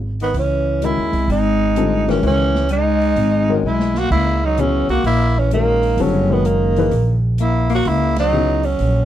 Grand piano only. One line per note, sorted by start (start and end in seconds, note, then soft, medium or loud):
0.83 1.11 D#3 medium
0.83 1.11 G#3 medium
0.83 1.11 C#4 soft
0.83 1.11 F#4 medium
0.83 1.11 A#4 medium
1.77 2.05 D3 medium
1.77 2.05 G3 medium
1.77 2.05 C4 medium
1.77 2.05 F4 medium
1.77 2.05 A4 medium
2.08 2.48 D#3 medium
2.08 2.48 G#3 medium
2.08 2.49 C#4 medium
2.08 2.49 F#4 medium
2.08 2.49 A#4 medium
3.49 3.62 D#3 medium
3.49 3.63 G#3 medium
3.49 3.63 C#4 medium
3.49 3.63 F#4 medium
3.49 3.63 A#4 medium
4.58 4.86 C#3 medium
4.58 4.87 F#3 medium
4.58 4.87 B3 medium
4.58 4.87 E4 medium
4.58 4.87 G#4 medium
5.52 6.24 D#3 medium
5.52 6.24 G#3 medium
5.52 6.25 C#4 medium
5.52 6.25 F#4 medium
5.52 6.25 A#4 medium
5.99 6.28 D3 medium
5.99 6.28 G3 medium
5.99 6.28 C4 medium
5.99 6.28 F4 medium
5.99 6.28 A4 medium
6.30 6.71 D#3 medium
6.30 6.71 G#3 medium
6.30 6.71 C#4 medium
6.30 6.71 F#4 medium
6.30 6.71 A#4 medium
6.78 6.91 E3 medium
6.78 6.91 A#3 medium
6.78 6.91 D#4 medium
6.78 6.92 G#4 medium
6.78 6.91 B4 medium
8.33 8.62 C#3 medium
8.33 8.62 F#3 medium
8.33 8.62 B3 medium
8.33 8.62 E4 medium
8.33 8.62 G#4 medium